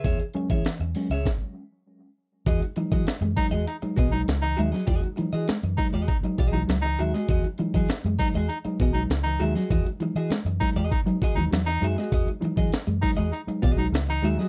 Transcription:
<<
  \new Staff \with { instrumentName = "Clean electric guitar" } { \time 4/4 \key e \major \tempo 4 = 99 <gis' cis'' e''>16 r8 <gis' cis'' e''>16 r8. <gis' cis'' e''>16 r2 | <fis' gis' dis''>16 r8 <fis' gis' dis''>16 r8. <fis' gis' dis''>16 r8 <fis' gis' dis''>16 r8. <fis' gis' e''>16 <fis' gis' dis''>16 | <fis' gis' dis''>16 r8 <fis' gis' dis''>16 r8. <fis' gis' dis''>16 r8 <fis' gis' dis''>16 r8. <fis' gis' e''>16 <fis' gis' dis''>16 | <fis' gis' dis''>16 r8 <fis' gis' dis''>16 r8. <fis' gis' dis''>16 r8 <fis' gis' dis''>16 r8. <fis' gis' e''>16 <fis' gis' dis''>16 |
<fis' gis' dis''>16 r8 <fis' gis' dis''>16 r8. <fis' gis' dis''>16 r8 <fis' gis' dis''>16 r8. <fis' gis' e''>16 <fis' gis' dis''>16 | <fis' gis' dis''>16 r8 <fis' gis' dis''>16 r8. <fis' gis' dis''>16 r8 <fis' gis' dis''>16 r8. <fis' gis' e''>16 <fis' gis' dis''>16 | }
  \new Staff \with { instrumentName = "Baritone saxophone" } { \time 4/4 \key e \major r1 | r4. dis'16 r16 dis'16 r8 dis'16 r16 dis'8 r16 | r4. dis'16 r16 dis'16 r8 dis'16 r16 dis'8 r16 | r4. dis'16 r16 dis'16 r8 dis'16 r16 dis'8 r16 |
r4. dis'16 r16 dis'16 r8 dis'16 r16 dis'8 r16 | r4. dis'16 r16 dis'16 r8 dis'16 r16 dis'8 r16 | }
  \new Staff \with { instrumentName = "Tine electric piano" } { \clef bass \time 4/4 \key e \major e16 r16 <fis gis cis'>16 r16 e16 r16 <fis gis cis'>16 <gis cis'>16 r2 | e16 <gis dis'>16 <fis gis dis'>16 r16 <gis dis'>16 e16 <fis gis dis'>16 r8 <fis gis dis'>16 e16 <fis gis dis'>16 <gis dis'>16 e16 <fis gis dis'>16 r16 | e16 <gis dis'>16 <fis gis dis'>16 r16 <gis dis'>16 e16 <fis gis dis'>16 r8 <fis gis dis'>16 e16 <fis gis dis'>16 <gis dis'>16 e16 <fis gis dis'>16 r16 | e16 <gis dis'>16 <fis gis dis'>16 r16 <gis dis'>16 e16 <fis gis dis'>16 r8 <fis gis dis'>16 e16 <fis gis dis'>16 <gis dis'>16 e16 <fis gis dis'>16 r16 |
e16 <gis dis'>16 <fis gis dis'>16 r16 <gis dis'>16 e16 <fis gis dis'>16 r8 <fis gis dis'>16 e16 <fis gis dis'>16 <gis dis'>16 e16 <fis gis dis'>16 r16 | e16 <gis dis'>16 <fis gis dis'>16 r16 <gis dis'>16 e16 <fis gis dis'>16 r8 <fis gis dis'>16 e16 <fis gis dis'>16 <gis dis'>16 e16 <fis gis dis'>16 r16 | }
  \new Staff \with { instrumentName = "Clean electric guitar" } { \clef bass \time 4/4 \key e \major r1 | r8 e16 fis16 r16 gis16 r16 gis16 r8 b16 r8. gis16 fis16 | e16 r16 e16 r16 gis16 r8 gis16 r16 fis16 r16 e16 fis16 r8 gis16 | r8 e16 fis16 r16 gis16 r16 gis16 r8 b16 r8. gis16 fis16 |
e16 r16 e16 r16 gis16 r8 gis16 r16 fis16 r16 e16 fis16 r8 gis16 | r8 e16 fis16 r16 gis16 r16 gis16 r8 b16 r8. gis16 fis16 | }
  \new Staff \with { instrumentName = "Fingered electric bass" } { \clef bass \time 4/4 \key e \major e,16 r8 e16 r16 e,16 r16 cis,16 r2 | e,16 r8 e16 r16 fis,16 r16 e,16 r8 b,,8 cis,8 dis,16 r16 | e,16 r8 e16 r16 fis,16 r16 e,16 r8 b,,8 cis,8 dis,16 r16 | e,16 r8 e16 r16 fis,16 r16 e,16 r8 b,,8 cis,8 dis,16 r16 |
e,16 r8 e16 r16 fis,16 r16 e,16 r8. dis,16 e,8 fis,16 r16 | e,16 r8 e16 r16 fis,16 r16 e,16 r8 b,,8 cis,8 dis,16 r16 | }
  \new DrumStaff \with { instrumentName = "Drums" } \drummode { \time 4/4 <hh bd>16 hh16 hh16 <hh bd>16 <hh sn>16 hh16 hho16 hh16 <bd sn>4 r4 | <hh bd>16 hh16 hh16 <hh bd>16 <hh sn>16 hh16 <hho bd>16 hh16 hh16 hh16 <hh bd>16 hh16 <hh sn>16 hh16 hh16 <hh sn>16 | <hh bd>16 hh16 hh16 hh16 <hh sn>16 hh16 <hho bd>16 hh16 <hh bd>16 hh16 <hh bd>16 hh16 <hh sn>16 hh16 hh16 <hh sn>16 | <hh bd>16 hh16 hh16 <hh bd>16 <hh sn>16 hh16 <hho bd>16 hh16 hh16 hh16 <hh bd>16 hh16 <hh sn>16 hh16 hh16 <hh sn>16 |
<hh bd>16 hh16 hh16 hh16 <hh sn>16 hh16 <hho bd>16 hh16 <hh bd>16 hh16 <hh bd>16 hh16 <hh sn>16 <hh sn>16 hh16 <hh sn>16 | <hh bd>16 hh16 hh16 <hh bd>16 <hh sn>16 hh16 <hho bd>16 hh16 hh16 hh16 <hh bd>16 hh16 <hh sn>16 hh16 hh16 <hh sn>16 | }
>>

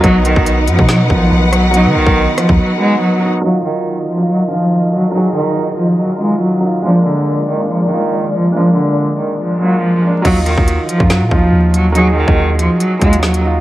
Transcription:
<<
  \new Staff \with { instrumentName = "String section" } { \time 4/4 \key ees \minor \tempo 4 = 141 << { <ees' fis''>1~ | <ees' fis''>1 | <ees ees''>1~ | <ees ees''>1 |
<aes d''>1~ | <aes d''>1 | r1 | r1 | } \\ { b'1~ | b'1 | <f' bes'>1~ | <f' bes'>1~ |
<f' bes'>1~ | <f' bes'>1 | r1 | r1 | } >> }
  \new Staff \with { instrumentName = "Grand piano" } { \time 4/4 \key ees \minor <fis b dis'>4. r16 <fis b dis'>8. <dis b dis'>4~ <dis b dis'>16 r16 | <fis b dis'>4.~ <fis b dis'>16 r8. <fis b dis'>8. r16 <fis b dis'>8 | <ges ees' f'>4. r16 <ges ees' f'>8. <f ees' f'>4~ <f ees' f'>16 r16 | <ges ees' aes'>4.~ <ges ees' aes'>16 r8. <ges ees' f'>8. r16 <ges ees' f'>8 |
<aes bes d'>4. r16 <aes bes d'>8. <aes bes f'>4~ <aes bes f'>16 r16 | <aes bes d'>4.~ <aes bes d'>16 r8. <aes bes f'>8. r16 <aes bes d'>8 | <ges ees' f'>4. r16 <ges ees' f'>8. <f ees' f'>4~ <f ees' f'>16 r16 | <ges ees' aes'>4.~ <ges ees' aes'>16 r8. <ges ees' f'>8. r16 <ges ees' f'>8 | }
  \new Staff \with { instrumentName = "Cello" } { \clef bass \time 4/4 \key ees \minor fis8 dis4 f8 fis8 f4 fis8 | fis8 dis4 f8 fis8 aes8 fis8 r8 | ges8 ees4 f8 ges8 f4 ges8 | ges8 ees4 f8 ges8 aes8 ges8 r8 |
f8 d4 ees8 f8 ees4 f8 | f8 d4 ees8 f8 ges8 f8 r8 | ges8 ees4 f8 ges8 f4 ges8 | ges8 ees4 f8 ges8 aes8 ges8 r8 | }
  \new Staff \with { instrumentName = "808-style bass" } { \clef bass \time 4/4 \key ees \minor b,,8. b,,8. fis,16 b,8. b,,8 b,,4~ | b,,16 dis16 b,,16 b,,8 r8 dis,16 r2 | r1 | r1 |
r1 | r1 | ees,8. ees,8 r8 ges,8 bes,16 ees,8 ees,4~ | ees,8. ees,4 r8. ees,4. | }
  \new DrumStaff \with { instrumentName = "Drums" } \drummode { \time 4/4 <hh bd>8 hh16 bd16 hh8 hh16 bd16 <hh sn>8 bd8 r8 <hh ss>8 | hh8. bd16 r8 <hh ss>16 bd16 r4 r4 | r4 r4 r4 r4 | r4 r4 r4 r4 |
r4 r4 r4 r4 | r4 r4 r4 r4 | <cymc hh bd>8 hh16 bd16 hh8 hh16 bd16 <hh sn>8 bd8 r8 hh8 | hh8. bd16 r8 hh8 hh8 <hh bd>16 hh16 sn16 hh8. | }
>>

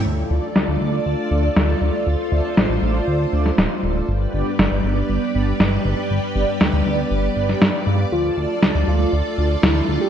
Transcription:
<<
  \new Staff \with { instrumentName = "String machine" } { \time 4/4 \key d \dorian \tempo 4 = 119 << { d''1 | c''1 | d''1~ | d''1~ |
d''1 | } \\ { <f' a'>1~ | <f' a'>1 | <g g' b'>1~ | <g g' b'>1 |
<f' a'>1 | } >> }
  \new Staff \with { instrumentName = "Soft synth lead" } { \time 4/4 \key d \dorian r1 | r1 | r1 | r1 |
f'8 r4 f'8 r4 e'8 r16 g'16 | }
  \new Staff \with { instrumentName = "Analog polysynth" } { \time 4/4 \key d \dorian r8 <a d' f' d''>8 r8 <a d' f' d''>4 <a d' f' d''>8 r8 <a d' f' d''>8 | r8 <a d' f' d''>8 r8 <a d' f' d''>4 <a d' f' d''>8 r8 <a d' f' d''>8 | r8 <b d' g' d''>8 r8 <b d' g' d''>4 <b d' g' d''>8 r8 <b d' g' d''>8 | r8 <b d' g' d''>8 r8 <b d' g' d''>4 <b d' g' d''>8 r8 <b d' g' f''>8 |
r8 <a d' f' d''>8 r8 <a d' f' d''>4 <a d' f' d''>8 r8 <a d' f' d''>8 | }
  \new Staff \with { instrumentName = "Analog synth bass" } { \clef bass \time 4/4 \key d \dorian d,16 r16 d,16 r16 d,16 d,16 d,16 r16 d,16 r16 d,16 r16 d,16 r16 d,16 r16 | d,16 r16 d,16 r16 a,,16 a,,16 a,,16 r16 d,16 r16 d,16 r16 d,,16 r16 d,,16 r16 | g,,16 r16 g,,16 r16 g,,16 g,,16 g,,16 r16 g,,16 r16 g,,16 r16 g,,16 r16 g,,16 r16 | g,,16 r16 g,,16 r16 d,16 d,16 d,16 r16 g,,16 r16 g,,16 r16 g,16 r16 g,16 r16 |
d,16 r16 d,16 r16 d,16 d,16 d,16 r16 d,16 r16 d,16 r16 d,16 r16 d,16 r16 | }
  \new DrumStaff \with { instrumentName = "Drums" } \drummode { \time 4/4 r4 sn4 r4 sn4 | r4 sn4 r8. sn16 sn4 | r4 sn4 r4 sn4 | r4 sn4 r8. sn16 sn4 |
r4 sn4 r4 sn4 | }
>>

